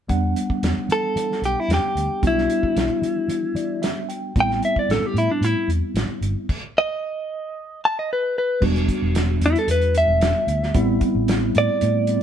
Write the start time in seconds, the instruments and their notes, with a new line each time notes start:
0.08 fingered electric bass E2, tine electric piano G3 B3 D4 F#5, kick, closed hi-hat
0.36 closed hi-hat
0.50 kick
0.63 fingered electric bass E2, snare, closed hi-hat
0.77 muted fingered electric bass stroke
0.89 fingered electric bass E3, clean electric guitar A4, closed hi-hat
1.16 fingered electric bass E3, closed hi-hat
1.32 snare
1.42 fingered electric bass B1, clean electric guitar G4, closed hi-hat
1.60 clean electric guitar E4
1.68 fingered electric bass E2, snare, closed hi-hat
1.74 clean electric guitar G4
1.82 muted fingered electric bass stroke
1.95 fingered electric bass D2, closed hi-hat
2.22 fingered electric bass B1, tine electric piano G3 B3 D4 F#4, kick, closed hi-hat
2.27 clean electric guitar E4
2.38 snare
2.50 closed hi-hat
2.63 kick
2.76 fingered electric bass B1, snare, closed hi-hat
3.02 fingered electric bass E3, closed hi-hat
3.28 fingered electric bass E3, closed hi-hat
3.55 fingered electric bass E3, tine electric piano D5, closed hi-hat
3.82 tine electric piano E5, snare, closed hi-hat
4.09 tine electric piano G5, closed hi-hat
4.36 fingered electric bass A1, tine electric piano G3 B3 C4 E4, kick, closed hi-hat
4.40 clean electric guitar G5
4.51 snare
4.63 clean electric guitar E5, closed hi-hat
4.76 clean electric guitar D5, kick
4.89 fingered electric bass A1, clean electric guitar A4, snare, closed hi-hat
5.06 clean electric guitar G4
5.14 fingered electric bass A2, closed hi-hat
5.18 clean electric guitar E4
5.31 clean electric guitar D4
5.41 fingered electric bass A2, clean electric guitar E4, closed hi-hat
5.68 fingered electric bass E2, closed hi-hat
5.94 fingered electric bass A1, snare, closed hi-hat
6.21 fingered electric bass G1, closed hi-hat
6.49 kick, crash
6.78 clean electric guitar D#5
7.85 clean electric guitar A5
7.99 clean electric guitar D#5
8.13 clean electric guitar B4
8.38 clean electric guitar B4
8.61 fingered electric bass E1, tine electric piano G3 B3 D4 F#4, kick, crash
8.76 closed hi-hat
8.88 kick, closed hi-hat
9.02 fingered electric bass E1
9.15 snare, closed hi-hat
9.41 fingered electric bass E2, closed hi-hat
9.46 clean electric guitar E4
9.56 clean electric guitar A4, closed hi-hat
9.68 fingered electric bass E2, clean electric guitar B4, closed hi-hat
9.82 closed hi-hat
9.95 clean electric guitar E5, closed hi-hat
10.08 fingered electric bass E1
10.21 snare, closed hi-hat
10.47 fingered electric bass D2, closed hi-hat
10.63 snare
10.74 fingered electric bass A1, tine electric piano G3 B3 C4 E4, kick, closed hi-hat
11.01 kick, closed hi-hat
11.15 fingered electric bass A1
11.28 snare, closed hi-hat
11.55 fingered electric bass A2, clean electric guitar D5, closed hi-hat
11.81 fingered electric bass A2, closed hi-hat
12.07 tine electric piano G3 B3 C4 E4, closed hi-hat